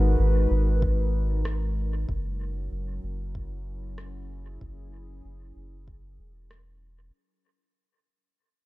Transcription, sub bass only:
0.00 0.16 G#1 loud
0.19 0.47 G#1 medium
0.51 2.06 G#1 loud
2.09 2.69 F#1 loud
2.72 3.00 F#1 medium
3.03 4.58 F#1 medium
4.61 5.21 F#1 medium
5.25 5.52 F#1 medium
5.56 6.19 F#1 loud
6.19 7.11 E1 medium

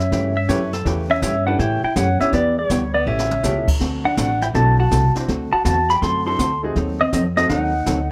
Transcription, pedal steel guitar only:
0.00 0.69 E5 medium
1.11 1.21 E5 medium
1.47 1.60 F#5 loud
1.59 1.83 G5 loud
1.84 1.97 G5 medium
1.97 2.20 F#5 loud
2.21 2.32 E5 medium
2.34 2.56 D5 loud
2.59 2.94 C#5 medium
2.94 3.06 D5 medium
3.08 3.68 E5 medium
4.05 4.17 F#5 medium
4.18 4.43 F#5 medium
4.42 4.47 G5 medium
4.55 4.78 A5 loud
4.80 5.14 A5 loud
5.53 5.64 A5 medium
5.65 5.90 A5 medium
5.90 6.03 B5 medium
6.02 6.25 C6 loud
6.27 6.61 C6 medium
7.01 7.13 D#5 medium
7.14 7.21 D#5 medium
7.37 7.49 D#5 medium
7.50 8.12 F#5 loud

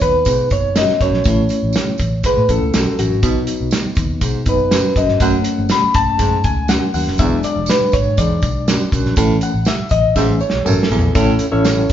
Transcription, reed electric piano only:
0.00 1.21 F#3 medium
0.00 1.22 B3 medium
0.00 1.22 D#4 medium
0.00 0.48 B4 loud
0.52 0.77 C#5 loud
0.77 1.00 D#5 medium
1.02 2.21 C#5 loud
1.25 1.95 A3 medium
1.25 1.96 C#4 medium
1.25 1.96 E4 medium
2.26 2.51 B4 medium
2.49 2.71 A3 soft
2.49 2.71 C#4 soft
2.49 2.71 E4 medium
2.49 3.00 A4 medium
2.99 3.69 F#4 medium
3.23 4.45 F#3 medium
3.23 4.45 B3 medium
3.23 4.46 D#4 medium
4.46 4.69 F#3 soft
4.46 4.69 B3 soft
4.46 4.69 D#4 medium
4.46 4.99 B4 medium
4.97 5.20 D#5 medium
5.20 7.14 F#3 medium
5.20 7.15 A3 medium
5.20 7.15 C#4 medium
5.20 5.73 F#5 loud
5.71 5.96 B5 loud
5.95 6.46 A5 loud
6.45 6.70 G#5 medium
6.69 6.92 F#5 loud
6.94 7.20 F#5 medium
7.18 9.13 F#3 medium
7.18 9.13 G#3 medium
7.18 9.14 D4 medium
7.18 7.45 E5 loud
7.44 7.70 D5 medium
7.70 7.95 B4 medium
7.94 8.19 C#5 loud
8.18 8.88 D5 medium
9.17 9.50 E3 medium
9.17 9.50 A3 medium
9.17 9.51 C#4 medium
9.43 9.68 F#5 medium
9.68 9.90 E5 loud
9.91 10.14 D#5 loud
10.15 10.38 E3 soft
10.15 10.38 A3 medium
10.15 10.38 C#4 medium
10.15 10.39 E5 loud
10.41 10.67 C#5 medium
10.65 11.12 A4 medium
11.15 11.45 C#4 medium
11.15 11.45 E4 medium
11.15 11.45 A4 medium
11.15 11.45 C#5 medium
11.15 11.45 E5 medium
11.52 11.93 C#4 medium
11.52 11.93 E4 medium
11.52 11.93 A4 medium
11.52 11.93 C#5 medium
11.52 11.93 E5 loud

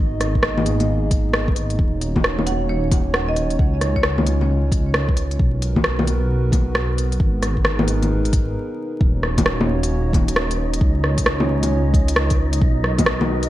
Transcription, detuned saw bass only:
0.00 1.77 G#1 medium
1.79 3.58 D#1 medium
3.59 5.38 C#2 medium
5.40 7.18 B1 medium
7.20 8.55 G#1 medium
9.01 10.80 D#1 medium
10.81 12.60 C#2 medium
12.61 13.49 B1 medium

